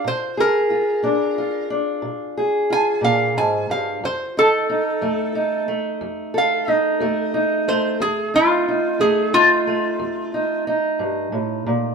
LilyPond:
<<
  \new Staff \with { instrumentName = "Resonator guitar played with a steel bar" } { \time 12/8 \key f \mixolydian \tempo 4. = 60 c''8 bes'2 r4. aes''8 f''8 aes''8 f''8 | c''8 a'2 r4 f''8 ees''4. c''8 | aes'8 f'4 aes'8 f'2 r2 | }
  \new Staff \with { instrumentName = "Steel-string acoustic guitar" } { \time 12/8 \key f \mixolydian << { r8 aes'8 f'8 d'8 f'8 d'4 aes'8 f'2 | r8 ees'8 ees'8 a8 ees'8 a4 a'8 ees'8 a8 ees'8 a8~ | a8 ees'8 ees'8 a8 ees'8 a4 ees'8 ees'2 | } \\ { bes,4 r8 bes,4 r8 bes,4 r8 bes,8 aes,8 g,8 | f,4 r8 f,4 r8 f,4 r8 f,4 r8 | f,4 r8 f,4 r8 f,4 r8 g,8 a,8 bes,8 | } >> }
>>